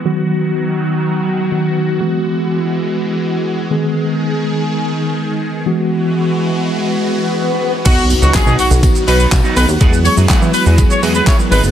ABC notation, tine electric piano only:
X:1
M:4/4
L:1/16
Q:1/4=123
K:Elyd
V:1 name="Tine electric piano"
[D,F,B,F]12 [D,F,B,F]4 | [E,G,B,F]12- [E,G,B,F]2 [D,G,B,G]2- | [D,G,B,G]12- [D,G,B,G]2 [E,G,B,F]2- | [E,G,B,F]12- [E,G,B,F]2 z2 |
[B,DF]2 [B,DF]3 [B,DF]3 [B,DF]2 [B,DF]3 [B,DF]3 | [F,G,B,EG]2 [F,G,B,EG]3 [F,G,B,EB]3 [F,G,B,EG]2 [F,G,B,EG]3 [F,G,B,EA] [B,DG]2 |]